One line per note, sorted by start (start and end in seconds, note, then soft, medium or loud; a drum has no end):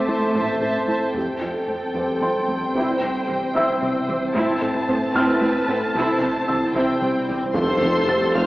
0.00 0.23 A1 medium
0.00 1.15 E3 medium
0.00 0.88 A3 medium
0.00 1.11 C4 medium
0.00 0.31 A4 soft
0.00 1.14 A4 medium
0.00 1.11 C5 medium
0.00 0.32 A5 soft
0.00 0.84 D6 soft
0.08 0.24 A3 medium
0.08 0.24 E4 soft
0.08 0.34 C5 soft
0.08 0.34 E5 soft
0.08 0.34 A5 soft
0.35 1.03 A1 medium
0.35 0.51 A2 medium
0.35 0.51 A3 medium
0.35 0.60 C5 soft
0.35 0.61 E5 soft
0.35 0.61 A5 soft
0.61 0.78 A2 medium
0.61 0.78 A4 soft
0.61 0.87 C5 soft
0.61 0.87 E5 soft
0.61 0.87 A5 soft
0.88 1.04 A3 soft
0.88 1.04 E4 soft
0.88 1.15 C5 soft
0.88 1.15 E5 soft
0.88 1.15 A5 soft
1.14 1.31 F2 medium
1.14 1.22 F2 soft
1.14 1.31 F3 medium
1.14 4.31 G3 medium
1.14 1.40 C4 soft
1.14 7.51 C4 medium
1.14 1.40 G4 soft
1.14 2.71 A4 medium
1.14 2.71 A4 soft
1.14 4.31 C5 medium
1.14 4.31 G5 soft
1.14 taiko soft
1.41 1.57 F2 soft
1.41 1.49 F2 soft
1.41 1.49 C4 soft
1.41 1.49 F4 soft
1.41 1.57 F4 soft
1.67 1.84 F2 soft
1.67 1.76 F2 soft
1.67 1.84 A3 soft
1.67 1.76 C4 soft
1.94 2.11 F2 medium
1.94 2.03 F2 soft
1.94 2.11 F3 medium
1.94 2.20 C4 soft
1.94 2.20 G4 soft
2.21 2.29 F2 soft
2.21 2.37 F3 soft
2.21 2.37 C4 soft
2.21 2.30 C4 soft
2.21 2.30 F4 soft
2.21 3.78 C6 soft
2.35 taiko soft
2.48 2.64 F2 soft
2.48 2.56 F2 soft
2.48 2.64 A3 soft
2.48 2.56 C4 soft
2.74 2.91 C2 medium
2.74 2.83 C3 medium
2.74 2.91 C3 medium
2.74 3.00 C4 soft
2.74 7.55 E4 medium
2.74 3.00 E4 medium
2.74 5.11 C5 soft
3.01 3.18 C2 medium
3.01 3.10 C3 soft
3.01 3.18 C4 medium
3.01 3.10 C4 soft
3.28 3.44 C2 medium
3.28 3.36 C3 soft
3.28 3.45 E3 medium
3.28 3.36 G3 soft
3.28 3.36 C4 soft
3.54 3.71 C2 medium
3.54 3.71 C3 medium
3.54 3.63 C3 medium
3.54 3.80 C4 soft
3.54 3.80 E4 soft
3.54 5.12 E5 soft
3.54 5.12 E6 soft
3.81 3.90 C3 soft
3.81 3.98 C3 medium
3.81 3.98 G3 medium
3.81 3.89 C4 soft
4.08 4.25 C2 soft
4.08 4.16 C3 soft
4.08 4.25 E3 medium
4.08 4.16 G3 soft
4.08 4.16 C4 soft
4.35 4.43 A2 medium
4.35 4.51 A2 medium
4.35 4.51 A3 medium
4.35 5.95 A3 medium
4.35 4.60 C4 medium
4.35 4.60 E4 medium
4.35 5.95 A4 medium
4.35 6.71 A5 medium
4.35 taiko medium
4.61 4.78 A2 medium
4.61 4.70 A2 soft
4.61 4.70 C4 soft
4.61 4.78 A4 medium
4.88 5.04 A2 medium
4.88 4.97 A2 soft
4.88 4.96 B3 medium
4.88 4.97 C4 soft
4.88 5.05 C4 medium
5.15 5.31 A2 medium
5.15 5.23 A2 medium
5.15 5.31 A3 medium
5.15 5.40 C4 medium
5.15 5.40 E4 medium
5.15 5.95 B4 medium
5.15 6.71 F6 medium
5.41 5.50 A2 soft
5.41 5.58 A3 medium
5.41 5.50 C4 medium
5.41 5.58 E4 medium
5.55 taiko soft
5.68 5.84 A2 soft
5.68 5.77 A2 soft
5.68 5.76 B3 medium
5.68 5.76 C4 medium
5.68 5.85 C4 medium
5.94 6.11 C2 medium
5.94 6.11 C3 medium
5.94 6.03 C3 medium
5.94 7.53 G3 medium
5.94 6.20 C4 medium
5.94 6.20 E4 medium
5.94 7.55 C5 medium
5.94 7.32 C5 soft
5.94 swell medium
6.21 6.37 C2 medium
6.21 6.30 C3 soft
6.21 6.30 C4 soft
6.21 6.38 C4 soft
6.48 6.64 C2 medium
6.48 6.56 C3 soft
6.48 6.65 E3 soft
6.48 6.56 G3 soft
6.48 6.56 C4 soft
6.48 7.51 E6 soft
6.75 6.91 C2 medium
6.75 6.91 C3 medium
6.75 6.83 C3 medium
6.75 7.00 C4 soft
6.75 7.00 E4 soft
6.75 7.35 G5 soft
7.02 7.18 C3 medium
7.02 7.10 C3 soft
7.02 7.18 G3 medium
7.02 7.10 C4 soft
7.28 7.44 C2 soft
7.28 7.37 C3 soft
7.28 7.45 E3 soft
7.28 7.37 G3 soft
7.28 7.37 C4 soft
7.54 7.66 F1 medium
7.54 7.63 F1 medium
7.54 7.71 F2 medium
7.54 7.63 F2 medium
7.54 7.71 F3 medium
7.54 8.46 G3 medium
7.54 8.46 A3 medium
7.54 8.46 C4 medium
7.54 8.46 F4 medium
7.54 8.46 G4 medium
7.54 8.46 A4 medium
7.54 8.31 A4 medium
7.54 8.31 C5 medium
7.54 8.31 C6 medium
7.54 taiko loud
7.54 impact medium
7.81 7.92 F1 medium
7.81 7.90 F1 medium
7.81 7.98 F2 medium
7.81 7.90 F2 medium
7.81 7.98 F4 medium
8.08 8.24 F2 medium
8.08 8.46 A6 soft
8.35 8.43 F1 medium
8.35 8.46 F1 medium
8.35 8.43 F2 medium
8.35 8.46 F2 loud
8.35 8.46 F3 medium
8.35 8.46 C5 medium
8.35 8.46 F5 medium
8.35 8.46 F6 medium